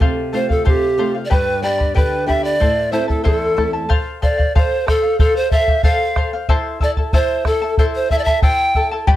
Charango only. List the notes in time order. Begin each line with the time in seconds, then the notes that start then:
0.01 A4 C5 F5
0.33 A4 C5 F5
0.49 C5 F5
0.65 A4 C5 F5
0.99 A4 C5 F5
1.14 C5 F5
1.30 G4 B4 D5 G5 B5
1.62 B4 D5 G5 B5
1.78 B4 D5 B5
1.95 G4 B4 D5 G5 B5
2.27 B4 D5 G5 B5
2.43 B4 D5 B5
2.60 E4 A4 C5 E5 A5
2.92 E4 A4 E5 A5
3.08 E4 A4 A5
3.24 E4 A4 C5 E5 A5
3.56 E4 A4 E5 A5
3.73 E4 A4 A5
3.89 A4 C5 F5
4.22 A4 C5 F5
4.38 C5 F5
4.55 A4 C5 F5
4.86 A4 C5 F5
5.02 C5 F5
5.20 A4 C5 F5
5.52 A4 C5 F5
5.68 C5 F5
5.84 A4 C5 F5
6.16 A4 C5 F5
6.33 C5 F5
6.49 E4 A4 C5 E5 A5
6.81 E4 A4 E5 A5
6.97 E4 A4 A5
7.14 E4 A4 C5 E5 A5
7.45 E4 A4 E5 A5
7.62 E4 A4 A5
7.79 E4 A4 C5 E5 A5
8.11 E4 A4 E5 A5
8.27 E4 A4 A5
8.43 E4 A4 C5 E5 A5
8.75 E4 A4 E5 A5
8.91 E4 A4 A5
9.07 G4 B4 D5 G5 B5